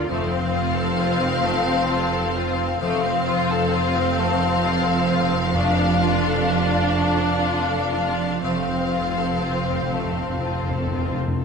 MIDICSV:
0, 0, Header, 1, 8, 480
1, 0, Start_track
1, 0, Key_signature, -1, "major"
1, 0, Tempo, 894188
1, 53, Time_signature, 6, 3, 24, 8
1, 1013, Tempo, 920245
1, 3413, Tempo, 955414
1, 3893, Tempo, 1001669
1, 5811, End_track
2, 0, Start_track
2, 0, Title_t, "Violin section"
2, 0, Program_c, 0, 48
2, 47, Note_on_c, 0, 77, 94
2, 1467, Note_off_c, 0, 77, 0
2, 1483, Note_on_c, 0, 77, 99
2, 4345, Note_off_c, 0, 77, 0
2, 4362, Note_on_c, 0, 77, 77
2, 5690, Note_off_c, 0, 77, 0
2, 5811, End_track
3, 0, Start_track
3, 0, Title_t, "Harp"
3, 0, Program_c, 1, 46
3, 0, Note_on_c, 1, 50, 71
3, 0, Note_on_c, 1, 58, 62
3, 0, Note_on_c, 1, 62, 62
3, 0, Note_on_c, 1, 65, 65
3, 0, Note_on_c, 1, 70, 61
3, 0, Note_on_c, 1, 77, 67
3, 0, Note_on_c, 1, 82, 64
3, 56, Note_on_c, 1, 53, 79
3, 71, Note_off_c, 1, 70, 0
3, 72, Note_off_c, 1, 50, 0
3, 72, Note_off_c, 1, 58, 0
3, 73, Note_off_c, 1, 62, 0
3, 74, Note_off_c, 1, 82, 0
3, 176, Note_on_c, 1, 60, 67
3, 288, Note_off_c, 1, 65, 0
3, 294, Note_on_c, 1, 65, 66
3, 414, Note_on_c, 1, 69, 61
3, 535, Note_on_c, 1, 72, 78
3, 652, Note_off_c, 1, 77, 0
3, 658, Note_on_c, 1, 77, 78
3, 776, Note_on_c, 1, 81, 71
3, 897, Note_on_c, 1, 84, 75
3, 1011, Note_off_c, 1, 81, 0
3, 1017, Note_on_c, 1, 81, 82
3, 1131, Note_off_c, 1, 72, 0
3, 1138, Note_on_c, 1, 72, 65
3, 1250, Note_off_c, 1, 69, 0
3, 1256, Note_on_c, 1, 69, 79
3, 1369, Note_off_c, 1, 65, 0
3, 1375, Note_on_c, 1, 65, 70
3, 1489, Note_off_c, 1, 53, 0
3, 1495, Note_on_c, 1, 53, 89
3, 1606, Note_off_c, 1, 60, 0
3, 1612, Note_on_c, 1, 60, 76
3, 1725, Note_off_c, 1, 65, 0
3, 1731, Note_on_c, 1, 65, 70
3, 1845, Note_off_c, 1, 69, 0
3, 1852, Note_on_c, 1, 69, 68
3, 1962, Note_off_c, 1, 72, 0
3, 1968, Note_on_c, 1, 72, 77
3, 2083, Note_off_c, 1, 77, 0
3, 2090, Note_on_c, 1, 77, 78
3, 2203, Note_off_c, 1, 81, 0
3, 2209, Note_on_c, 1, 81, 78
3, 2322, Note_off_c, 1, 84, 0
3, 2328, Note_on_c, 1, 84, 81
3, 2442, Note_off_c, 1, 81, 0
3, 2448, Note_on_c, 1, 81, 76
3, 2560, Note_off_c, 1, 72, 0
3, 2567, Note_on_c, 1, 72, 73
3, 2678, Note_off_c, 1, 69, 0
3, 2685, Note_on_c, 1, 69, 76
3, 2800, Note_off_c, 1, 65, 0
3, 2806, Note_on_c, 1, 65, 68
3, 2920, Note_off_c, 1, 53, 0
3, 2926, Note_on_c, 1, 53, 92
3, 2943, Note_off_c, 1, 60, 0
3, 2943, Note_off_c, 1, 72, 0
3, 2943, Note_off_c, 1, 84, 0
3, 3048, Note_on_c, 1, 62, 76
3, 3162, Note_off_c, 1, 65, 0
3, 3168, Note_on_c, 1, 65, 66
3, 3285, Note_off_c, 1, 69, 0
3, 3291, Note_on_c, 1, 69, 63
3, 3415, Note_on_c, 1, 74, 69
3, 3529, Note_off_c, 1, 77, 0
3, 3535, Note_on_c, 1, 77, 69
3, 3645, Note_off_c, 1, 81, 0
3, 3651, Note_on_c, 1, 81, 73
3, 3772, Note_on_c, 1, 86, 65
3, 3885, Note_off_c, 1, 81, 0
3, 3891, Note_on_c, 1, 81, 71
3, 4002, Note_off_c, 1, 74, 0
3, 4008, Note_on_c, 1, 74, 58
3, 4123, Note_off_c, 1, 69, 0
3, 4128, Note_on_c, 1, 69, 62
3, 4240, Note_off_c, 1, 65, 0
3, 4246, Note_on_c, 1, 65, 55
3, 4361, Note_off_c, 1, 53, 0
3, 4366, Note_on_c, 1, 53, 66
3, 4386, Note_off_c, 1, 74, 0
3, 4388, Note_off_c, 1, 86, 0
3, 4389, Note_off_c, 1, 62, 0
3, 4485, Note_on_c, 1, 60, 58
3, 4599, Note_off_c, 1, 65, 0
3, 4605, Note_on_c, 1, 65, 52
3, 4717, Note_off_c, 1, 69, 0
3, 4723, Note_on_c, 1, 69, 51
3, 4844, Note_on_c, 1, 72, 56
3, 4960, Note_off_c, 1, 77, 0
3, 4966, Note_on_c, 1, 77, 56
3, 5082, Note_off_c, 1, 81, 0
3, 5087, Note_on_c, 1, 81, 56
3, 5208, Note_on_c, 1, 84, 54
3, 5326, Note_off_c, 1, 81, 0
3, 5332, Note_on_c, 1, 81, 59
3, 5447, Note_off_c, 1, 72, 0
3, 5452, Note_on_c, 1, 72, 49
3, 5569, Note_off_c, 1, 69, 0
3, 5574, Note_on_c, 1, 69, 52
3, 5690, Note_off_c, 1, 65, 0
3, 5695, Note_on_c, 1, 65, 51
3, 5805, Note_off_c, 1, 53, 0
3, 5811, Note_off_c, 1, 60, 0
3, 5811, Note_off_c, 1, 65, 0
3, 5811, Note_off_c, 1, 69, 0
3, 5811, Note_off_c, 1, 72, 0
3, 5811, Note_off_c, 1, 77, 0
3, 5811, Note_off_c, 1, 81, 0
3, 5811, Note_off_c, 1, 84, 0
3, 5811, End_track
4, 0, Start_track
4, 0, Title_t, "Violin section"
4, 0, Program_c, 2, 48
4, 52, Note_on_c, 2, 57, 83
4, 163, Note_off_c, 2, 57, 0
4, 174, Note_on_c, 2, 60, 76
4, 289, Note_on_c, 2, 65, 79
4, 292, Note_off_c, 2, 60, 0
4, 409, Note_off_c, 2, 65, 0
4, 410, Note_on_c, 2, 69, 74
4, 530, Note_off_c, 2, 69, 0
4, 531, Note_on_c, 2, 65, 83
4, 651, Note_off_c, 2, 65, 0
4, 651, Note_on_c, 2, 60, 79
4, 770, Note_on_c, 2, 57, 76
4, 771, Note_off_c, 2, 60, 0
4, 888, Note_on_c, 2, 60, 80
4, 891, Note_off_c, 2, 57, 0
4, 1012, Note_off_c, 2, 60, 0
4, 1017, Note_on_c, 2, 65, 77
4, 1134, Note_off_c, 2, 65, 0
4, 1138, Note_on_c, 2, 69, 71
4, 1255, Note_off_c, 2, 69, 0
4, 1256, Note_on_c, 2, 65, 79
4, 1373, Note_off_c, 2, 65, 0
4, 1376, Note_on_c, 2, 60, 75
4, 1493, Note_off_c, 2, 60, 0
4, 1498, Note_on_c, 2, 57, 94
4, 1605, Note_off_c, 2, 57, 0
4, 1617, Note_on_c, 2, 60, 85
4, 1731, Note_off_c, 2, 60, 0
4, 1736, Note_on_c, 2, 65, 92
4, 1850, Note_off_c, 2, 65, 0
4, 1857, Note_on_c, 2, 69, 81
4, 1971, Note_off_c, 2, 69, 0
4, 1975, Note_on_c, 2, 65, 85
4, 2090, Note_off_c, 2, 65, 0
4, 2090, Note_on_c, 2, 60, 87
4, 2208, Note_off_c, 2, 60, 0
4, 2215, Note_on_c, 2, 57, 87
4, 2330, Note_off_c, 2, 57, 0
4, 2333, Note_on_c, 2, 60, 78
4, 2448, Note_off_c, 2, 60, 0
4, 2451, Note_on_c, 2, 65, 81
4, 2565, Note_on_c, 2, 69, 77
4, 2567, Note_off_c, 2, 65, 0
4, 2681, Note_on_c, 2, 65, 82
4, 2683, Note_off_c, 2, 69, 0
4, 2801, Note_off_c, 2, 65, 0
4, 2803, Note_on_c, 2, 60, 76
4, 2923, Note_off_c, 2, 60, 0
4, 2926, Note_on_c, 2, 57, 90
4, 3037, Note_off_c, 2, 57, 0
4, 3047, Note_on_c, 2, 62, 78
4, 3167, Note_off_c, 2, 62, 0
4, 3172, Note_on_c, 2, 65, 88
4, 3291, Note_on_c, 2, 69, 78
4, 3292, Note_off_c, 2, 65, 0
4, 3412, Note_on_c, 2, 65, 79
4, 3413, Note_off_c, 2, 69, 0
4, 3531, Note_off_c, 2, 65, 0
4, 3531, Note_on_c, 2, 62, 78
4, 3647, Note_on_c, 2, 57, 70
4, 3650, Note_off_c, 2, 62, 0
4, 3767, Note_on_c, 2, 62, 73
4, 3769, Note_off_c, 2, 57, 0
4, 3890, Note_off_c, 2, 62, 0
4, 3893, Note_on_c, 2, 65, 70
4, 4006, Note_on_c, 2, 69, 61
4, 4010, Note_off_c, 2, 65, 0
4, 4123, Note_on_c, 2, 65, 69
4, 4127, Note_off_c, 2, 69, 0
4, 4242, Note_on_c, 2, 62, 62
4, 4245, Note_off_c, 2, 65, 0
4, 4362, Note_on_c, 2, 57, 72
4, 4365, Note_off_c, 2, 62, 0
4, 4476, Note_off_c, 2, 57, 0
4, 4478, Note_on_c, 2, 60, 64
4, 4600, Note_on_c, 2, 65, 65
4, 4602, Note_off_c, 2, 60, 0
4, 4723, Note_off_c, 2, 65, 0
4, 4725, Note_on_c, 2, 69, 60
4, 4840, Note_on_c, 2, 65, 68
4, 4846, Note_off_c, 2, 69, 0
4, 4964, Note_off_c, 2, 65, 0
4, 4966, Note_on_c, 2, 60, 64
4, 5086, Note_on_c, 2, 57, 58
4, 5088, Note_off_c, 2, 60, 0
4, 5206, Note_on_c, 2, 60, 59
4, 5208, Note_off_c, 2, 57, 0
4, 5328, Note_on_c, 2, 65, 56
4, 5330, Note_off_c, 2, 60, 0
4, 5449, Note_on_c, 2, 69, 50
4, 5452, Note_off_c, 2, 65, 0
4, 5571, Note_on_c, 2, 65, 53
4, 5573, Note_off_c, 2, 69, 0
4, 5689, Note_on_c, 2, 60, 55
4, 5693, Note_off_c, 2, 65, 0
4, 5809, Note_off_c, 2, 60, 0
4, 5811, End_track
5, 0, Start_track
5, 0, Title_t, "Viola section"
5, 0, Program_c, 3, 48
5, 52, Note_on_c, 3, 60, 84
5, 1469, Note_off_c, 3, 60, 0
5, 1491, Note_on_c, 3, 60, 86
5, 2902, Note_off_c, 3, 60, 0
5, 2924, Note_on_c, 3, 62, 91
5, 4349, Note_off_c, 3, 62, 0
5, 4372, Note_on_c, 3, 60, 67
5, 5695, Note_off_c, 3, 60, 0
5, 5811, End_track
6, 0, Start_track
6, 0, Title_t, "Cello section"
6, 0, Program_c, 4, 48
6, 49, Note_on_c, 4, 41, 91
6, 1468, Note_off_c, 4, 41, 0
6, 1491, Note_on_c, 4, 41, 104
6, 4349, Note_off_c, 4, 41, 0
6, 4368, Note_on_c, 4, 41, 80
6, 5693, Note_off_c, 4, 41, 0
6, 5811, End_track
7, 0, Start_track
7, 0, Title_t, "Timpani"
7, 0, Program_c, 5, 47
7, 2920, Note_on_c, 5, 41, 100
7, 3629, Note_off_c, 5, 41, 0
7, 4367, Note_on_c, 5, 41, 41
7, 4399, Note_off_c, 5, 41, 0
7, 4445, Note_on_c, 5, 41, 42
7, 4481, Note_off_c, 5, 41, 0
7, 4488, Note_on_c, 5, 41, 41
7, 4515, Note_off_c, 5, 41, 0
7, 4521, Note_on_c, 5, 41, 45
7, 4557, Note_off_c, 5, 41, 0
7, 4565, Note_on_c, 5, 41, 44
7, 4596, Note_off_c, 5, 41, 0
7, 4602, Note_on_c, 5, 41, 44
7, 4635, Note_off_c, 5, 41, 0
7, 4641, Note_on_c, 5, 41, 44
7, 4675, Note_off_c, 5, 41, 0
7, 4681, Note_on_c, 5, 41, 47
7, 4712, Note_off_c, 5, 41, 0
7, 4718, Note_on_c, 5, 41, 46
7, 4752, Note_off_c, 5, 41, 0
7, 4758, Note_on_c, 5, 41, 53
7, 4790, Note_off_c, 5, 41, 0
7, 4796, Note_on_c, 5, 41, 53
7, 4826, Note_off_c, 5, 41, 0
7, 4831, Note_on_c, 5, 41, 54
7, 4865, Note_off_c, 5, 41, 0
7, 4871, Note_on_c, 5, 41, 51
7, 4907, Note_off_c, 5, 41, 0
7, 4915, Note_on_c, 5, 41, 57
7, 4948, Note_off_c, 5, 41, 0
7, 4953, Note_on_c, 5, 41, 59
7, 4981, Note_off_c, 5, 41, 0
7, 4987, Note_on_c, 5, 41, 65
7, 5022, Note_off_c, 5, 41, 0
7, 5027, Note_on_c, 5, 41, 63
7, 5060, Note_off_c, 5, 41, 0
7, 5065, Note_on_c, 5, 41, 69
7, 5102, Note_off_c, 5, 41, 0
7, 5106, Note_on_c, 5, 41, 66
7, 5137, Note_off_c, 5, 41, 0
7, 5142, Note_on_c, 5, 41, 70
7, 5175, Note_off_c, 5, 41, 0
7, 5181, Note_on_c, 5, 41, 70
7, 5216, Note_off_c, 5, 41, 0
7, 5222, Note_on_c, 5, 41, 71
7, 5253, Note_off_c, 5, 41, 0
7, 5259, Note_on_c, 5, 41, 76
7, 5293, Note_off_c, 5, 41, 0
7, 5299, Note_on_c, 5, 41, 76
7, 5331, Note_off_c, 5, 41, 0
7, 5337, Note_on_c, 5, 41, 82
7, 5374, Note_off_c, 5, 41, 0
7, 5380, Note_on_c, 5, 41, 85
7, 5410, Note_off_c, 5, 41, 0
7, 5416, Note_on_c, 5, 41, 86
7, 5451, Note_off_c, 5, 41, 0
7, 5457, Note_on_c, 5, 41, 91
7, 5489, Note_off_c, 5, 41, 0
7, 5495, Note_on_c, 5, 41, 94
7, 5528, Note_off_c, 5, 41, 0
7, 5534, Note_on_c, 5, 41, 98
7, 5569, Note_off_c, 5, 41, 0
7, 5575, Note_on_c, 5, 41, 101
7, 5610, Note_off_c, 5, 41, 0
7, 5616, Note_on_c, 5, 41, 91
7, 5644, Note_off_c, 5, 41, 0
7, 5650, Note_on_c, 5, 41, 97
7, 5687, Note_off_c, 5, 41, 0
7, 5693, Note_on_c, 5, 41, 93
7, 5724, Note_off_c, 5, 41, 0
7, 5730, Note_on_c, 5, 41, 108
7, 5765, Note_off_c, 5, 41, 0
7, 5771, Note_on_c, 5, 41, 97
7, 5804, Note_off_c, 5, 41, 0
7, 5811, End_track
8, 0, Start_track
8, 0, Title_t, "Double bass section"
8, 0, Program_c, 6, 48
8, 48, Note_on_c, 6, 29, 91
8, 1468, Note_off_c, 6, 29, 0
8, 1486, Note_on_c, 6, 29, 96
8, 4347, Note_off_c, 6, 29, 0
8, 4369, Note_on_c, 6, 29, 77
8, 5694, Note_off_c, 6, 29, 0
8, 5811, End_track
0, 0, End_of_file